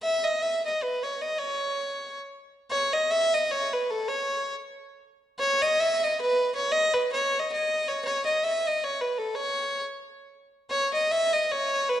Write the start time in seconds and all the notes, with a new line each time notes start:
0.03 E5
0.24 D#5
0.42 E5
0.66 D#5
0.83 B4
1.03 C#5
1.21 D#5
1.38 C#5
2.71 C#5
2.93 D#5
3.11 E5
3.34 D#5
3.51 C#5
3.73 B4
3.90 A4
4.09 C#5
5.39 C#5
5.62 D#5
5.80 E5
6.03 D#5
6.21 B4
6.55 C#5
6.72 D#5
6.94 B4
7.13 C#5
7.40 D#5
7.53 D#5
7.88 C#5
8.05 C#5
8.26 D#5
8.44 E5
8.67 D#5
8.84 C#5
9.01 B4
9.18 A4
9.35 C#5
10.70 C#5
10.94 D#5
11.11 E5
11.33 D#5
11.52 C#5
11.89 B4